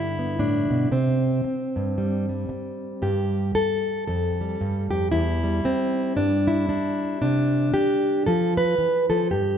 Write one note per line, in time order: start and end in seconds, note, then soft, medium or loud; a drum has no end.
0.00 0.90 G2 medium
0.00 0.92 D3 medium
0.00 0.18 B3 medium
0.00 0.38 D4 soft
0.00 0.91 E4 loud
0.19 0.90 B3 soft
0.39 0.70 A2 medium
0.39 0.92 D4 medium
0.70 0.91 B2 medium
0.92 1.43 C3 medium
0.92 3.02 C4 medium
1.44 muted steel-string acoustic guitar stroke medium
1.76 2.48 G2 medium
1.98 2.28 G3 soft
2.29 4.40 G3 soft
2.49 muted steel-string acoustic guitar stroke medium
3.02 3.54 G2 medium
3.02 3.55 G4 medium
3.55 4.06 A4 loud
3.55 muted steel-string acoustic guitar stroke medium
4.08 4.60 F2 medium
4.08 4.90 A4 medium
4.41 5.42 G3 soft
4.61 4.91 G2 medium
4.91 5.12 F2 medium
4.91 5.11 G4 medium
5.12 5.63 E2 medium
5.12 6.17 E4 loud
5.44 8.26 G3 soft
5.64 6.16 C4 medium
5.64 muted steel-string acoustic guitar stroke medium
6.17 6.69 G2 medium
6.17 6.68 D4 loud
6.47 7.21 E4 medium
6.69 7.20 D4 loud
6.69 muted steel-string acoustic guitar stroke medium
7.22 7.73 C3 medium
7.22 8.26 D4 loud
7.74 8.26 G4 loud
7.74 muted steel-string acoustic guitar stroke medium
8.26 8.78 F3 medium
8.26 8.57 A4 loud
8.57 9.09 B4 loud
8.78 9.10 E3 medium
9.10 9.31 F3 medium
9.10 9.31 A4 medium
9.31 9.58 G2 medium
9.31 9.58 G4 loud